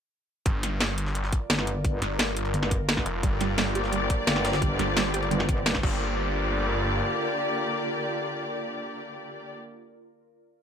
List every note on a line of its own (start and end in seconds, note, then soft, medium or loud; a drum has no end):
0.46 1.31 G1 loud
0.46 5.82 F4 medium
0.46 kick loud
0.46 closed hi-hat medium
0.55 5.83 A#4 medium
0.63 snare soft
0.63 closed hi-hat medium
0.63 closed hi-hat loud
0.75 3.24 D5 medium
0.80 snare loud
0.80 closed hi-hat medium
0.98 closed hi-hat medium
1.06 snare soft
1.15 closed hi-hat medium
1.24 snare soft
1.32 kick loud
1.32 closed hi-hat loud
1.32 closed hi-hat medium
1.50 2.00 G1 loud
1.50 snare loud
1.50 closed hi-hat medium
1.59 snare medium
1.67 closed hi-hat loud
1.67 closed hi-hat medium
1.85 kick loud
1.85 closed hi-hat medium
2.02 2.52 G1 loud
2.02 snare soft
2.02 closed hi-hat medium
2.19 snare loud
2.19 closed hi-hat medium
2.37 closed hi-hat loud
2.37 closed hi-hat medium
2.45 closed hi-hat soft
2.54 3.04 G1 loud
2.54 closed hi-hat medium
2.63 snare medium
2.71 kick loud
2.71 closed hi-hat medium
2.89 snare loud
2.89 closed hi-hat medium
2.97 kick medium
2.97 snare soft
2.97 snare medium
3.06 3.22 F1 loud
3.06 closed hi-hat medium
3.06 closed hi-hat loud
3.13 5.83 C5 medium
3.23 4.09 G1 loud
3.23 5.81 D3 medium
3.23 3.27 G3 medium
3.23 5.81 A#3 medium
3.23 5.81 G4 medium
3.23 5.81 D5 medium
3.23 kick loud
3.23 closed hi-hat medium
3.41 3.44 G3 medium
3.41 snare soft
3.41 closed hi-hat medium
3.58 3.67 G3 medium
3.58 snare loud
3.58 closed hi-hat medium
3.75 3.79 G4 loud
3.75 closed hi-hat medium
3.84 snare soft
3.93 3.99 G3 medium
3.93 closed hi-hat medium
4.10 kick loud
4.10 closed hi-hat loud
4.10 closed hi-hat medium
4.27 4.78 G1 medium
4.27 4.31 A#3 loud
4.27 snare loud
4.27 closed hi-hat medium
4.27 closed hi-hat loud
4.36 snare medium
4.45 snare loud
4.45 closed hi-hat medium
4.53 snare loud
4.53 closed hi-hat medium
4.62 4.66 G3 medium
4.62 kick loud
4.62 closed hi-hat medium
4.79 5.30 G1 loud
4.79 4.83 G3 medium
4.79 snare soft
4.79 closed hi-hat medium
4.97 5.06 G3 medium
4.97 snare loud
4.97 closed hi-hat medium
5.14 5.18 G4 loud
5.14 closed hi-hat medium
5.23 closed hi-hat soft
5.31 5.82 G1 loud
5.31 5.37 G3 medium
5.31 closed hi-hat medium
5.40 snare medium
5.49 kick loud
5.49 closed hi-hat medium
5.66 5.72 G3 medium
5.66 snare loud
5.66 closed hi-hat medium
5.66 open hi-hat medium
5.75 kick medium
5.75 snare medium
5.83 7.01 G1 loud
5.83 9.54 D3 medium
5.83 6.16 G3 loud
5.83 9.54 A#3 medium
5.83 9.54 F4 medium
5.83 9.54 G4 medium
5.83 9.54 D5 medium
5.83 kick loud
5.83 crash medium
5.89 9.54 A#4 medium
6.11 9.54 D5 medium